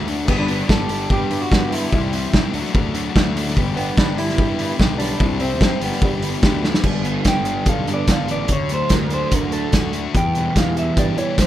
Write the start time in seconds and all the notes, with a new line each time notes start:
Already playing: D2 F#4 D5 E5 A5
0.08 D3 F#3 A3 D4 F#4, open hi-hat
0.25 G1 G2 D3 G3 A3 B3 B4 F#5, kick, crash
0.30 G3 B3 D4 G4 G5
0.39 D4 B5
0.48 G2 D3 G3 B3 D4 G4, open hi-hat
0.69 G1 G2 D3 G3 B3 D4 G4 A4 D6, kick, snare
0.89 G1 G2 D3 G3 B3 D4 G4, open hi-hat
1.10 G2 D3 G3 B3 D4 G4 D6, kick
1.31 G2 D3 G3 B3 D4 G4, open hi-hat
1.42 F#4 D6
1.52 G2 D3 G3 B3 D4 G4, kick, snare
1.72 G2 D3 G3 B3 D4 E4 G4 C6, open hi-hat
1.91 C2 C3 E3 G3 C4 E4 G4 C5 E5 G5, kick
2.13 C3 E3 G3 C4 E4 G4, open hi-hat
2.33 C2 C3 E3 G3 C4 E4 G4, kick, snare
2.53 D2 D3 F#3 A3 D4 F#4 D5 A5, open hi-hat
2.65 snare
2.73 D2 D3 F#3 A3 D4 F#4, kick
2.95 D3 F#3 A3 D4 F#4, open hi-hat
3.15 D2 D3 F#3 A3 D4 F#4, kick, snare
3.35 D3 F#3 A3 D4 F#4, open hi-hat
3.48 snare
3.56 G1 G2 D3 G3 B3 D4 G4 B4, kick
3.76 G2 D3 G3 B3 D4 G4 G5, open hi-hat
3.96 G1 G2 D3 G3 B3 D4 G4 B5, kick, snare
4.17 G1 G2 D3 G3 B3 D4 E4 G4 B5, open hi-hat
4.29 snare
4.38 G2 D3 G3 B3 D4 G4, kick
4.58 G2 D3 G3 B3 D4 G4, open hi-hat
4.78 B1 G2 D3 G3 B3 D4 G4, kick, snare
4.98 G2 D3 G3 B3 D4 G4, open hi-hat
5.02 B5
5.17 C2 C3 G3 C4 E4 G4 C5 E5 B5, kick
5.39 C3 G3 C4 E4 G4, open hi-hat
5.44 G5
5.60 G2 C3 G3 C4 E4 G4, kick, snare
5.80 G1 G2 D3 G3 B3 D4 G4 B4 D5, open hi-hat
5.85 G5
5.92 snare
6.01 G1 G2 D3 G3 B3 D4 G4 D5, kick
6.22 G2 D3 G3 B3 D4 G4, open hi-hat
6.43 D2 G2 D3 G3 B3 D4 G4, kick, snare
6.64 G2 D3 G3 B3 D4 G4, snare
6.74 snare
6.82 G1 G2 D3 G3 B3 D4, kick, crash
7.04 B3, closed hi-hat
7.25 G1 G3 G5, kick, snare, closed hi-hat
7.45 D4, closed hi-hat
7.66 B1 A4 F5, kick, closed hi-hat
7.87 G2 B3, closed hi-hat
7.94 D5
8.08 G1 A4, kick, snare, closed hi-hat
8.12 F5
8.28 A1 B3 D5, closed hi-hat
8.48 D2 D3 F#3 A3 D4, kick, closed hi-hat
8.52 C#5
8.69 A3, closed hi-hat
8.74 C5
8.89 D2 D3 A#4, kick, snare, closed hi-hat
9.10 D4 C5, closed hi-hat
9.32 D2 F#4 A#4, kick, closed hi-hat
9.52 A3 A4, closed hi-hat
9.72 D2 F#4, kick, snare, closed hi-hat
9.93 A3, closed hi-hat
10.12 E2 E3 G3 B3 E4, kick, closed hi-hat
10.17 G5
10.35 B2, closed hi-hat
10.56 E2 E3 F5, kick, snare, closed hi-hat
10.77 B3 E5, closed hi-hat
10.97 G2 G4 D5, kick, closed hi-hat
11.17 E3 G3 C#5, closed hi-hat
11.38 C2 G4 C5, kick, snare, closed hi-hat